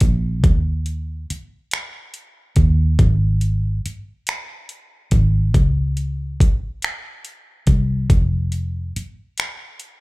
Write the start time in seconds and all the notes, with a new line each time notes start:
0.00 A#1, kick, closed hi-hat
0.44 D#2, kick, closed hi-hat
0.86 closed hi-hat
1.30 muted fingered electric bass stroke, closed hi-hat
1.71 finger snap, closed hi-hat
2.14 closed hi-hat
2.56 D#2, kick, closed hi-hat
2.99 G#1, kick, closed hi-hat
3.41 closed hi-hat
3.86 muted fingered electric bass stroke, closed hi-hat
4.27 finger snap, closed hi-hat
4.69 closed hi-hat
5.11 G#1, kick, closed hi-hat
5.54 C#2, kick, closed hi-hat
5.97 closed hi-hat
6.40 muted fingered electric bass stroke, kick, closed hi-hat
6.82 finger snap, closed hi-hat
7.25 closed hi-hat
7.67 C2, kick, closed hi-hat
8.10 F1, kick, closed hi-hat
8.52 closed hi-hat
8.96 muted fingered electric bass stroke, closed hi-hat
9.38 finger snap, closed hi-hat
9.80 closed hi-hat